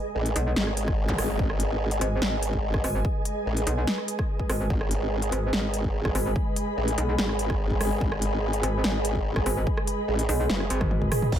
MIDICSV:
0, 0, Header, 1, 7, 480
1, 0, Start_track
1, 0, Key_signature, 5, "minor"
1, 0, Tempo, 413793
1, 1615, Time_signature, 4, 2, 24, 8
1, 13215, End_track
2, 0, Start_track
2, 0, Title_t, "Ambient pad"
2, 0, Program_c, 0, 92
2, 0, Note_on_c, 0, 68, 89
2, 0, Note_on_c, 0, 75, 76
2, 0, Note_on_c, 0, 80, 92
2, 6059, Note_on_c, 0, 83, 94
2, 6084, Note_off_c, 0, 80, 0
2, 13215, Note_off_c, 0, 68, 0
2, 13215, Note_off_c, 0, 75, 0
2, 13215, Note_off_c, 0, 83, 0
2, 13215, End_track
3, 0, Start_track
3, 0, Title_t, "String section"
3, 0, Program_c, 1, 48
3, 0, Note_on_c, 1, 56, 81
3, 0, Note_on_c, 1, 68, 75
3, 0, Note_on_c, 1, 71, 76
3, 0, Note_on_c, 1, 75, 91
3, 5434, Note_off_c, 1, 75, 0
3, 5455, Note_on_c, 1, 80, 92
3, 13113, Note_off_c, 1, 80, 0
3, 13134, Note_on_c, 1, 75, 92
3, 13215, Note_off_c, 1, 56, 0
3, 13215, Note_off_c, 1, 68, 0
3, 13215, Note_off_c, 1, 71, 0
3, 13215, Note_off_c, 1, 75, 0
3, 13215, End_track
4, 0, Start_track
4, 0, Title_t, "Wobble bass"
4, 0, Program_c, 2, 39
4, 174, Note_on_c, 2, 33, 102
4, 396, Note_off_c, 2, 33, 0
4, 654, Note_on_c, 2, 32, 95
4, 1356, Note_off_c, 2, 32, 0
4, 1375, Note_on_c, 2, 32, 100
4, 1596, Note_off_c, 2, 32, 0
4, 1615, Note_on_c, 2, 32, 98
4, 2316, Note_off_c, 2, 32, 0
4, 2575, Note_on_c, 2, 32, 95
4, 3276, Note_off_c, 2, 32, 0
4, 4014, Note_on_c, 2, 33, 101
4, 4236, Note_off_c, 2, 33, 0
4, 5455, Note_on_c, 2, 32, 99
4, 6156, Note_off_c, 2, 32, 0
4, 6415, Note_on_c, 2, 32, 97
4, 7116, Note_off_c, 2, 32, 0
4, 7854, Note_on_c, 2, 33, 102
4, 8076, Note_off_c, 2, 33, 0
4, 8334, Note_on_c, 2, 32, 95
4, 9036, Note_off_c, 2, 32, 0
4, 9054, Note_on_c, 2, 32, 97
4, 9276, Note_off_c, 2, 32, 0
4, 9294, Note_on_c, 2, 32, 98
4, 9996, Note_off_c, 2, 32, 0
4, 10254, Note_on_c, 2, 32, 97
4, 10956, Note_off_c, 2, 32, 0
4, 11695, Note_on_c, 2, 33, 101
4, 11916, Note_off_c, 2, 33, 0
4, 12175, Note_on_c, 2, 30, 99
4, 12396, Note_off_c, 2, 30, 0
4, 13135, Note_on_c, 2, 32, 98
4, 13215, Note_off_c, 2, 32, 0
4, 13215, End_track
5, 0, Start_track
5, 0, Title_t, "Wobble bass"
5, 0, Program_c, 3, 39
5, 415, Note_on_c, 3, 35, 102
5, 636, Note_off_c, 3, 35, 0
5, 2334, Note_on_c, 3, 32, 99
5, 2556, Note_off_c, 3, 32, 0
5, 3295, Note_on_c, 3, 32, 101
5, 3516, Note_off_c, 3, 32, 0
5, 4255, Note_on_c, 3, 35, 96
5, 4476, Note_off_c, 3, 35, 0
5, 5214, Note_on_c, 3, 32, 98
5, 5436, Note_off_c, 3, 32, 0
5, 6175, Note_on_c, 3, 32, 99
5, 6396, Note_off_c, 3, 32, 0
5, 7135, Note_on_c, 3, 32, 101
5, 7356, Note_off_c, 3, 32, 0
5, 8095, Note_on_c, 3, 35, 99
5, 8317, Note_off_c, 3, 35, 0
5, 10015, Note_on_c, 3, 32, 99
5, 10236, Note_off_c, 3, 32, 0
5, 10975, Note_on_c, 3, 32, 100
5, 11196, Note_off_c, 3, 32, 0
5, 11935, Note_on_c, 3, 35, 99
5, 12156, Note_off_c, 3, 35, 0
5, 12414, Note_on_c, 3, 32, 98
5, 12876, Note_off_c, 3, 32, 0
5, 13215, End_track
6, 0, Start_track
6, 0, Title_t, "Zap"
6, 0, Program_c, 4, 103
6, 1258, Note_on_c, 4, 60, 63
6, 1375, Note_off_c, 4, 60, 0
6, 13215, End_track
7, 0, Start_track
7, 0, Title_t, "Drums"
7, 298, Note_on_c, 9, 42, 39
7, 414, Note_off_c, 9, 42, 0
7, 415, Note_on_c, 9, 42, 87
7, 531, Note_off_c, 9, 42, 0
7, 654, Note_on_c, 9, 38, 123
7, 770, Note_off_c, 9, 38, 0
7, 777, Note_on_c, 9, 37, 50
7, 893, Note_off_c, 9, 37, 0
7, 894, Note_on_c, 9, 42, 86
7, 1010, Note_off_c, 9, 42, 0
7, 1017, Note_on_c, 9, 37, 51
7, 1019, Note_on_c, 9, 36, 110
7, 1133, Note_off_c, 9, 37, 0
7, 1135, Note_off_c, 9, 36, 0
7, 1259, Note_on_c, 9, 36, 64
7, 1374, Note_on_c, 9, 37, 76
7, 1374, Note_on_c, 9, 46, 94
7, 1375, Note_off_c, 9, 36, 0
7, 1490, Note_off_c, 9, 37, 0
7, 1490, Note_off_c, 9, 46, 0
7, 1615, Note_on_c, 9, 36, 124
7, 1731, Note_off_c, 9, 36, 0
7, 1738, Note_on_c, 9, 37, 59
7, 1854, Note_off_c, 9, 37, 0
7, 1854, Note_on_c, 9, 42, 83
7, 1970, Note_off_c, 9, 42, 0
7, 2218, Note_on_c, 9, 42, 38
7, 2334, Note_off_c, 9, 42, 0
7, 2335, Note_on_c, 9, 42, 83
7, 2451, Note_off_c, 9, 42, 0
7, 2574, Note_on_c, 9, 38, 127
7, 2690, Note_off_c, 9, 38, 0
7, 2814, Note_on_c, 9, 42, 84
7, 2930, Note_off_c, 9, 42, 0
7, 2938, Note_on_c, 9, 36, 65
7, 3054, Note_off_c, 9, 36, 0
7, 3178, Note_on_c, 9, 36, 115
7, 3178, Note_on_c, 9, 37, 76
7, 3294, Note_off_c, 9, 36, 0
7, 3294, Note_off_c, 9, 37, 0
7, 3294, Note_on_c, 9, 46, 89
7, 3410, Note_off_c, 9, 46, 0
7, 3535, Note_on_c, 9, 36, 127
7, 3651, Note_off_c, 9, 36, 0
7, 3775, Note_on_c, 9, 42, 80
7, 3891, Note_off_c, 9, 42, 0
7, 4138, Note_on_c, 9, 42, 37
7, 4254, Note_off_c, 9, 42, 0
7, 4255, Note_on_c, 9, 42, 79
7, 4371, Note_off_c, 9, 42, 0
7, 4494, Note_on_c, 9, 38, 126
7, 4610, Note_off_c, 9, 38, 0
7, 4618, Note_on_c, 9, 37, 52
7, 4734, Note_off_c, 9, 37, 0
7, 4735, Note_on_c, 9, 42, 79
7, 4851, Note_off_c, 9, 42, 0
7, 4858, Note_on_c, 9, 36, 112
7, 4858, Note_on_c, 9, 37, 53
7, 4974, Note_off_c, 9, 36, 0
7, 4974, Note_off_c, 9, 37, 0
7, 5098, Note_on_c, 9, 36, 66
7, 5214, Note_off_c, 9, 36, 0
7, 5214, Note_on_c, 9, 37, 76
7, 5214, Note_on_c, 9, 46, 88
7, 5330, Note_off_c, 9, 37, 0
7, 5330, Note_off_c, 9, 46, 0
7, 5455, Note_on_c, 9, 36, 120
7, 5571, Note_off_c, 9, 36, 0
7, 5578, Note_on_c, 9, 37, 61
7, 5694, Note_off_c, 9, 37, 0
7, 5694, Note_on_c, 9, 42, 77
7, 5810, Note_off_c, 9, 42, 0
7, 6058, Note_on_c, 9, 42, 35
7, 6174, Note_off_c, 9, 42, 0
7, 6174, Note_on_c, 9, 42, 77
7, 6290, Note_off_c, 9, 42, 0
7, 6414, Note_on_c, 9, 38, 120
7, 6530, Note_off_c, 9, 38, 0
7, 6654, Note_on_c, 9, 42, 79
7, 6770, Note_off_c, 9, 42, 0
7, 6778, Note_on_c, 9, 36, 62
7, 6894, Note_off_c, 9, 36, 0
7, 7018, Note_on_c, 9, 36, 110
7, 7018, Note_on_c, 9, 37, 80
7, 7134, Note_off_c, 9, 36, 0
7, 7134, Note_off_c, 9, 37, 0
7, 7135, Note_on_c, 9, 46, 89
7, 7251, Note_off_c, 9, 46, 0
7, 7375, Note_on_c, 9, 36, 116
7, 7491, Note_off_c, 9, 36, 0
7, 7615, Note_on_c, 9, 42, 78
7, 7731, Note_off_c, 9, 42, 0
7, 7978, Note_on_c, 9, 42, 36
7, 8094, Note_off_c, 9, 42, 0
7, 8095, Note_on_c, 9, 42, 78
7, 8211, Note_off_c, 9, 42, 0
7, 8334, Note_on_c, 9, 38, 116
7, 8450, Note_off_c, 9, 38, 0
7, 8458, Note_on_c, 9, 37, 57
7, 8574, Note_off_c, 9, 37, 0
7, 8574, Note_on_c, 9, 42, 77
7, 8690, Note_off_c, 9, 42, 0
7, 8698, Note_on_c, 9, 36, 103
7, 8698, Note_on_c, 9, 37, 56
7, 8814, Note_off_c, 9, 36, 0
7, 8814, Note_off_c, 9, 37, 0
7, 8938, Note_on_c, 9, 36, 62
7, 9054, Note_off_c, 9, 36, 0
7, 9055, Note_on_c, 9, 37, 84
7, 9055, Note_on_c, 9, 46, 89
7, 9171, Note_off_c, 9, 37, 0
7, 9171, Note_off_c, 9, 46, 0
7, 9295, Note_on_c, 9, 36, 116
7, 9411, Note_off_c, 9, 36, 0
7, 9418, Note_on_c, 9, 37, 65
7, 9534, Note_off_c, 9, 37, 0
7, 9535, Note_on_c, 9, 42, 79
7, 9651, Note_off_c, 9, 42, 0
7, 9898, Note_on_c, 9, 42, 36
7, 10014, Note_off_c, 9, 42, 0
7, 10015, Note_on_c, 9, 42, 79
7, 10131, Note_off_c, 9, 42, 0
7, 10255, Note_on_c, 9, 38, 114
7, 10371, Note_off_c, 9, 38, 0
7, 10495, Note_on_c, 9, 42, 82
7, 10611, Note_off_c, 9, 42, 0
7, 10619, Note_on_c, 9, 36, 60
7, 10735, Note_off_c, 9, 36, 0
7, 10858, Note_on_c, 9, 37, 85
7, 10859, Note_on_c, 9, 36, 103
7, 10974, Note_off_c, 9, 37, 0
7, 10975, Note_off_c, 9, 36, 0
7, 10975, Note_on_c, 9, 46, 94
7, 11091, Note_off_c, 9, 46, 0
7, 11215, Note_on_c, 9, 36, 114
7, 11331, Note_off_c, 9, 36, 0
7, 11339, Note_on_c, 9, 37, 65
7, 11455, Note_off_c, 9, 37, 0
7, 11455, Note_on_c, 9, 42, 83
7, 11571, Note_off_c, 9, 42, 0
7, 11819, Note_on_c, 9, 42, 39
7, 11935, Note_off_c, 9, 42, 0
7, 11935, Note_on_c, 9, 46, 65
7, 12051, Note_off_c, 9, 46, 0
7, 12175, Note_on_c, 9, 38, 116
7, 12175, Note_on_c, 9, 48, 61
7, 12291, Note_off_c, 9, 38, 0
7, 12291, Note_off_c, 9, 48, 0
7, 12298, Note_on_c, 9, 37, 56
7, 12298, Note_on_c, 9, 48, 59
7, 12414, Note_off_c, 9, 37, 0
7, 12414, Note_off_c, 9, 48, 0
7, 12415, Note_on_c, 9, 42, 83
7, 12531, Note_off_c, 9, 42, 0
7, 12538, Note_on_c, 9, 37, 57
7, 12538, Note_on_c, 9, 47, 69
7, 12539, Note_on_c, 9, 36, 101
7, 12654, Note_off_c, 9, 37, 0
7, 12654, Note_off_c, 9, 47, 0
7, 12655, Note_off_c, 9, 36, 0
7, 12655, Note_on_c, 9, 47, 87
7, 12771, Note_off_c, 9, 47, 0
7, 12779, Note_on_c, 9, 36, 60
7, 12895, Note_off_c, 9, 36, 0
7, 12895, Note_on_c, 9, 37, 83
7, 12895, Note_on_c, 9, 45, 101
7, 12895, Note_on_c, 9, 46, 99
7, 13011, Note_off_c, 9, 37, 0
7, 13011, Note_off_c, 9, 45, 0
7, 13011, Note_off_c, 9, 46, 0
7, 13019, Note_on_c, 9, 45, 90
7, 13135, Note_off_c, 9, 45, 0
7, 13135, Note_on_c, 9, 36, 117
7, 13135, Note_on_c, 9, 49, 75
7, 13215, Note_off_c, 9, 36, 0
7, 13215, Note_off_c, 9, 49, 0
7, 13215, End_track
0, 0, End_of_file